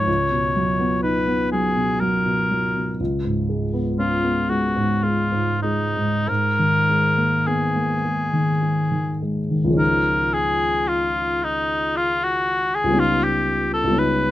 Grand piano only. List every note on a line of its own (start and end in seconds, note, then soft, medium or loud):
0.00 0.10 G#2 soft
0.00 0.10 F3 soft
0.00 0.10 A#3 soft
0.07 2.96 C#2 soft
0.31 0.70 B2 soft
0.56 0.94 F#3 soft
0.80 1.18 B3 soft
1.03 1.42 D#4 soft
1.27 1.66 B3 soft
1.53 1.91 F#3 soft
1.76 2.16 B2 soft
2.01 2.41 F#3 soft
2.26 2.65 B2 soft
2.51 2.90 F#3 soft
2.76 3.00 B2 soft
3.00 6.25 C#2 soft
3.25 3.64 G#2 soft
3.49 3.89 G#3 soft
3.74 4.14 B3 soft
3.98 4.39 C#4 soft
4.24 4.65 B3 soft
4.50 4.92 G#3 soft
4.76 5.20 G#2 soft
5.03 5.51 G#3 soft
5.32 5.83 G#2 soft
5.64 6.16 G#3 soft
5.97 6.26 G#2 soft
6.28 9.75 G#2 soft
6.59 7.07 D#3 soft
6.89 7.36 G#3 soft
7.18 7.64 A#3 soft
7.47 7.93 B3 soft
7.76 8.22 A#3 soft
8.04 8.51 G#3 soft
8.33 8.80 D#3 soft
8.62 9.09 G#3 soft
8.92 9.40 D#3 soft
9.22 9.69 G#3 soft
9.51 9.79 D#3 soft
9.64 12.82 C#2 soft
9.64 12.89 F3 soft
9.70 12.90 G#3 soft
9.70 12.91 C#4 soft
9.76 12.93 D#4 soft
12.84 13.82 C#2 soft
12.84 13.86 G3 soft
12.90 13.88 B3 soft
12.90 13.91 C#4 soft
12.96 13.94 D#4 soft
13.84 14.31 C#2 soft
13.84 14.31 G3 soft
13.90 14.31 B3 soft
13.90 14.31 C#4 soft
13.96 14.31 D#4 soft